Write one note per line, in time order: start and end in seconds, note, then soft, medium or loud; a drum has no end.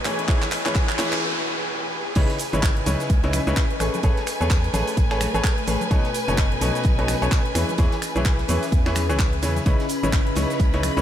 0.00 1.22 C#4 medium
0.00 2.15 B4 medium
0.00 2.15 G#5 medium
0.00 1.22 B5 medium
0.00 riser medium
0.05 0.23 E3 medium
0.05 0.23 E4 medium
0.05 0.23 G#4 medium
0.05 0.23 B4 medium
0.05 0.23 C#5 medium
0.05 clap medium
0.05 closed hi-hat medium
0.05 open hi-hat loud
0.19 closed hi-hat medium
0.28 0.47 E3 medium
0.28 0.47 E4 medium
0.28 0.47 G#4 medium
0.28 0.47 B4 medium
0.28 0.47 C#5 loud
0.28 kick loud
0.28 clap medium
0.28 closed hi-hat medium
0.28 noise sweep medium
0.42 1.22 G#4 medium
0.42 snare soft
0.42 clap medium
0.42 closed hi-hat soft
0.52 1.22 E5 medium
0.52 clap medium
0.52 closed hi-hat medium
0.52 open hi-hat loud
0.66 0.97 E3 medium
0.66 0.97 E4 medium
0.66 0.97 G#4 medium
0.66 0.96 B4 medium
0.66 0.97 C#5 medium
0.66 clap medium
0.66 closed hi-hat medium
0.75 kick loud
0.75 snare loud
0.75 clap medium
0.75 closed hi-hat medium
0.89 snare soft
0.89 clap medium
0.89 closed hi-hat medium
0.99 1.22 E3 medium
0.99 1.22 E4 medium
0.99 1.22 G#4 medium
0.99 1.22 B4 medium
0.99 1.22 C#5 loud
0.99 clap loud
0.99 closed hi-hat medium
0.99 open hi-hat loud
1.12 clap medium
1.12 closed hi-hat medium
2.15 2.25 C#2 loud
2.15 2.34 C#3 medium
2.15 2.34 D#4 medium
2.15 2.34 E4 medium
2.15 2.34 B4 medium
2.15 9.65 B4 medium
2.15 2.34 C#5 loud
2.15 9.67 G#5 medium
2.15 kick loud
2.15 closed hi-hat medium
2.15 tambourine medium
2.15 crash loud
2.15 shaker soft
2.29 snare soft
2.29 closed hi-hat soft
2.29 tambourine soft
2.38 closed hi-hat medium
2.38 open hi-hat loud
2.38 tambourine medium
2.38 shaker medium
2.53 2.81 G#1 medium
2.53 2.84 C#3 medium
2.53 2.84 D#4 medium
2.53 2.84 E4 medium
2.53 2.84 B4 medium
2.53 2.84 C#5 loud
2.53 closed hi-hat soft
2.53 tambourine soft
2.53 high conga medium
2.53 shaker soft
2.63 kick loud
2.63 snare loud
2.63 clap loud
2.63 closed hi-hat medium
2.63 tambourine medium
2.63 shaker soft
2.71 4.66 C#4 medium
2.77 closed hi-hat soft
2.86 2.96 C#2 loud
2.86 3.20 C#3 medium
2.86 3.20 D#4 medium
2.86 3.20 E4 medium
2.86 3.20 B4 medium
2.86 3.20 C#5 loud
2.86 closed hi-hat medium
2.86 open hi-hat loud
2.86 tambourine medium
2.86 high conga loud
2.86 shaker medium
2.90 4.66 D#5 medium
2.99 snare medium
2.99 closed hi-hat soft
2.99 tambourine soft
2.99 shaker soft
3.10 3.40 C#2 medium
3.10 kick loud
3.10 closed hi-hat medium
3.10 tambourine medium
3.10 shaker soft
3.24 3.40 C#3 medium
3.24 3.40 D#4 medium
3.24 3.40 E4 medium
3.24 3.40 B4 medium
3.24 3.40 C#5 loud
3.24 closed hi-hat soft
3.24 tambourine soft
3.33 finger snap medium
3.33 closed hi-hat medium
3.33 open hi-hat loud
3.33 tambourine medium
3.33 high conga medium
3.33 shaker medium
3.47 3.54 C#2 medium
3.47 3.63 C#3 medium
3.47 3.63 D#4 medium
3.47 3.63 E4 medium
3.47 3.63 B4 medium
3.47 3.63 C#5 loud
3.47 closed hi-hat soft
3.47 tambourine soft
3.47 shaker soft
3.56 kick loud
3.56 snare loud
3.56 clap loud
3.56 closed hi-hat medium
3.56 shaker soft
3.71 closed hi-hat soft
3.80 3.89 A1 medium
3.80 3.98 A3 medium
3.80 3.98 G#4 medium
3.80 3.98 A4 medium
3.80 3.98 B4 medium
3.80 3.98 C#5 medium
3.80 finger snap medium
3.80 closed hi-hat medium
3.80 open hi-hat loud
3.80 tambourine medium
3.80 shaker medium
3.94 closed hi-hat soft
3.94 tambourine soft
3.94 high conga medium
3.94 shaker soft
4.03 4.13 A1 loud
4.03 4.22 A3 medium
4.03 4.22 G#4 medium
4.03 4.22 A4 medium
4.03 4.22 B4 medium
4.03 4.22 C#5 loud
4.03 kick loud
4.03 closed hi-hat medium
4.03 tambourine medium
4.03 shaker soft
4.15 7.55 A3 medium
4.15 snare soft
4.15 closed hi-hat soft
4.15 tambourine soft
4.19 6.54 G#5 medium
4.26 finger snap medium
4.26 closed hi-hat medium
4.26 open hi-hat loud
4.26 tambourine medium
4.26 shaker medium
4.41 4.69 E2 medium
4.41 4.72 A3 medium
4.41 4.72 G#4 medium
4.41 4.72 A4 medium
4.41 4.72 B4 medium
4.41 4.72 C#5 medium
4.41 closed hi-hat soft
4.41 tambourine soft
4.41 high conga medium
4.41 shaker soft
4.50 kick loud
4.50 snare loud
4.50 clap loud
4.50 closed hi-hat medium
4.50 tambourine medium
4.50 shaker soft
4.63 snare soft
4.63 closed hi-hat soft
4.74 4.83 A1 loud
4.74 5.08 A3 medium
4.74 5.08 G#4 medium
4.74 5.08 A4 medium
4.74 5.08 B4 medium
4.74 5.08 C#5 loud
4.74 closed hi-hat medium
4.74 open hi-hat loud
4.74 tambourine medium
4.74 high conga medium
4.74 shaker medium
4.87 closed hi-hat soft
4.87 open hi-hat medium
4.87 tambourine soft
4.87 shaker soft
4.97 5.27 A1 medium
4.97 kick loud
4.97 closed hi-hat medium
4.97 tambourine medium
4.97 shaker soft
5.11 5.27 A3 medium
5.11 5.27 G#4 medium
5.11 5.27 A4 medium
5.11 5.27 B4 medium
5.11 5.27 C#5 loud
5.11 finger snap medium
5.11 snare soft
5.11 closed hi-hat soft
5.11 tambourine soft
5.20 finger snap medium
5.20 closed hi-hat medium
5.20 open hi-hat loud
5.20 tambourine medium
5.20 high conga medium
5.20 shaker medium
5.34 5.41 A1 medium
5.34 5.50 A3 loud
5.34 5.50 G#4 medium
5.34 5.50 A4 medium
5.34 5.50 B4 medium
5.34 5.50 C#5 loud
5.34 closed hi-hat soft
5.34 tambourine soft
5.34 shaker soft
5.44 kick loud
5.44 snare loud
5.44 clap loud
5.44 closed hi-hat medium
5.44 tambourine medium
5.44 shaker soft
5.58 closed hi-hat soft
5.67 5.77 A1 medium
5.67 5.86 G#4 medium
5.67 5.86 A4 medium
5.67 5.86 B4 medium
5.67 5.86 C#5 medium
5.67 closed hi-hat medium
5.67 open hi-hat loud
5.67 tambourine medium
5.67 shaker medium
5.81 closed hi-hat soft
5.81 tambourine soft
5.81 high conga medium
5.81 shaker soft
5.91 6.00 B1 loud
5.91 6.09 B2 medium
5.91 11.02 C#4 medium
5.91 6.09 D#4 medium
5.91 6.09 A4 medium
5.91 6.09 B4 medium
5.91 6.09 C#5 loud
5.91 kick loud
5.91 closed hi-hat medium
5.91 tambourine medium
5.91 shaker soft
6.04 snare soft
6.04 closed hi-hat soft
6.04 tambourine soft
6.11 7.55 D#5 medium
6.11 open hi-hat loud
6.11 tambourine loud
6.11 shaker medium
6.15 closed hi-hat medium
6.28 6.56 F#1 medium
6.28 6.59 B2 medium
6.28 6.59 D#4 medium
6.28 6.59 A4 medium
6.28 6.59 B4 medium
6.28 6.59 C#5 medium
6.28 closed hi-hat soft
6.28 tambourine soft
6.28 high conga medium
6.28 shaker soft
6.37 kick loud
6.37 snare loud
6.37 clap loud
6.37 closed hi-hat medium
6.37 tambourine medium
6.37 shaker soft
6.52 closed hi-hat soft
6.61 6.71 B1 loud
6.61 6.95 B2 medium
6.61 6.95 D#4 medium
6.61 6.95 A4 medium
6.61 6.95 B4 medium
6.61 6.95 C#5 loud
6.61 closed hi-hat medium
6.61 open hi-hat loud
6.61 tambourine medium
6.61 high conga medium
6.61 shaker medium
6.75 snare soft
6.75 closed hi-hat soft
6.75 tambourine soft
6.75 shaker soft
6.84 7.15 B1 medium
6.84 kick loud
6.84 closed hi-hat medium
6.84 tambourine medium
6.84 shaker soft
6.98 7.14 B2 loud
6.98 7.14 D#4 medium
6.98 7.14 A4 medium
6.98 7.14 B4 medium
6.98 7.14 C#5 loud
6.98 closed hi-hat soft
6.98 tambourine soft
7.08 finger snap medium
7.08 closed hi-hat medium
7.08 open hi-hat loud
7.08 tambourine loud
7.08 high conga medium
7.08 shaker medium
7.22 7.29 B1 medium
7.22 7.38 B2 medium
7.22 7.38 D#4 medium
7.22 7.38 A4 medium
7.22 7.38 B4 medium
7.22 7.38 C#5 loud
7.22 closed hi-hat soft
7.22 tambourine soft
7.22 shaker soft
7.32 kick loud
7.32 snare loud
7.32 clap loud
7.32 closed hi-hat medium
7.32 tambourine medium
7.32 shaker soft
7.46 closed hi-hat soft
7.55 7.64 E2 medium
7.55 7.73 E3 medium
7.55 7.73 E4 medium
7.55 7.73 G#4 medium
7.55 7.73 B4 medium
7.55 7.73 C#5 medium
7.55 finger snap medium
7.55 closed hi-hat medium
7.55 open hi-hat loud
7.55 tambourine loud
7.55 shaker medium
7.69 closed hi-hat soft
7.69 tambourine soft
7.69 high conga medium
7.69 shaker soft
7.78 7.88 E2 loud
7.78 7.97 E3 loud
7.78 7.97 E4 medium
7.78 7.97 G#4 medium
7.78 7.97 B4 medium
7.78 7.97 C#5 loud
7.78 kick loud
7.78 closed hi-hat loud
7.78 closed hi-hat medium
7.78 tambourine soft
7.78 shaker soft
7.92 10.07 G#4 medium
7.92 9.66 E5 medium
7.92 snare medium
7.92 closed hi-hat soft
7.92 tambourine soft
8.02 finger snap medium
8.02 closed hi-hat medium
8.02 open hi-hat loud
8.02 tambourine medium
8.02 shaker medium
8.15 8.44 B1 medium
8.15 8.47 E3 medium
8.15 8.47 E4 medium
8.15 8.47 G#4 medium
8.15 8.47 B4 medium
8.15 8.47 C#5 medium
8.15 closed hi-hat soft
8.15 tambourine soft
8.15 high conga medium
8.15 shaker soft
8.25 kick loud
8.25 snare loud
8.25 clap loud
8.25 closed hi-hat medium
8.25 tambourine medium
8.25 shaker soft
8.39 snare soft
8.39 closed hi-hat soft
8.48 8.58 E2 loud
8.48 8.83 E3 medium
8.48 8.83 E4 medium
8.48 8.83 G#4 medium
8.48 8.83 B4 medium
8.48 8.83 C#5 loud
8.48 11.02 B5 medium
8.48 closed hi-hat medium
8.48 open hi-hat loud
8.48 tambourine medium
8.48 high conga medium
8.48 shaker medium
8.63 closed hi-hat soft
8.63 open hi-hat medium
8.63 tambourine soft
8.63 shaker soft
8.72 9.11 E2 medium
8.72 kick loud
8.72 closed hi-hat medium
8.72 tambourine medium
8.72 shaker soft
8.86 9.02 E3 loud
8.86 9.02 E4 medium
8.86 9.02 G#4 medium
8.86 9.02 B4 medium
8.86 9.02 C#5 loud
8.86 finger snap medium
8.86 snare soft
8.86 closed hi-hat soft
8.86 tambourine soft
8.95 finger snap medium
8.95 closed hi-hat medium
8.95 open hi-hat loud
8.95 tambourine medium
8.95 high conga medium
8.95 shaker medium
9.09 9.44 C#2 medium
9.09 9.25 E3 medium
9.09 9.25 E4 medium
9.09 9.25 G#4 medium
9.09 9.25 B4 medium
9.09 9.25 C#5 loud
9.09 closed hi-hat soft
9.09 tambourine soft
9.09 shaker soft
9.19 kick loud
9.19 snare loud
9.19 clap loud
9.19 closed hi-hat loud
9.19 closed hi-hat medium
9.19 shaker soft
9.33 closed hi-hat soft
9.42 9.60 E2 medium
9.42 9.61 C#3 medium
9.42 9.61 E4 medium
9.42 9.61 G#4 medium
9.42 9.61 B4 medium
9.42 9.61 C#5 medium
9.42 closed hi-hat medium
9.42 open hi-hat loud
9.42 tambourine loud
9.42 shaker medium
9.56 closed hi-hat soft
9.56 tambourine soft
9.56 high conga medium
9.56 shaker soft
9.66 9.75 C#2 loud
9.66 9.84 C#3 loud
9.66 9.84 D#4 medium
9.66 9.84 E4 medium
9.66 11.02 B4 medium
9.66 9.84 B4 medium
9.66 9.84 C#5 loud
9.66 11.02 B5 medium
9.66 kick loud
9.66 closed hi-hat loud
9.66 closed hi-hat medium
9.66 tambourine soft
9.66 shaker soft
9.80 snare soft
9.80 closed hi-hat soft
9.80 tambourine soft
9.89 closed hi-hat medium
9.89 open hi-hat loud
9.89 tambourine loud
9.89 shaker medium
9.95 11.02 D#5 medium
10.03 10.31 G#1 medium
10.03 10.34 C#3 medium
10.03 10.34 D#4 medium
10.03 10.34 E4 medium
10.03 10.34 B4 medium
10.03 10.34 C#5 medium
10.03 closed hi-hat soft
10.03 tambourine soft
10.03 high conga medium
10.03 shaker soft
10.09 11.02 G#4 medium
10.13 kick loud
10.13 snare loud
10.13 clap loud
10.13 closed hi-hat medium
10.13 tambourine soft
10.13 shaker soft
10.27 closed hi-hat soft
10.36 10.46 C#2 loud
10.36 10.70 C#3 medium
10.36 10.70 D#4 medium
10.36 10.70 E4 medium
10.36 10.70 B4 medium
10.36 10.70 C#5 loud
10.36 closed hi-hat medium
10.36 open hi-hat loud
10.36 tambourine medium
10.36 high conga medium
10.36 shaker medium
10.50 snare soft
10.50 closed hi-hat soft
10.50 tambourine soft
10.50 shaker soft
10.59 10.90 C#2 medium
10.59 kick loud
10.59 closed hi-hat medium
10.59 tambourine medium
10.59 shaker soft
10.73 10.90 C#3 loud
10.73 10.90 D#4 medium
10.73 10.90 E4 medium
10.73 10.90 B4 medium
10.73 10.90 C#5 loud
10.73 closed hi-hat soft
10.73 tambourine soft
10.83 finger snap medium
10.83 closed hi-hat medium
10.83 open hi-hat loud
10.83 tambourine medium
10.83 high conga medium
10.83 shaker medium
10.97 11.02 C#2 medium
10.97 11.02 C#3 medium
10.97 11.02 D#4 medium
10.97 11.02 E4 medium
10.97 11.02 B4 medium
10.97 11.02 C#5 loud
10.97 closed hi-hat soft
10.97 tambourine soft
10.97 shaker soft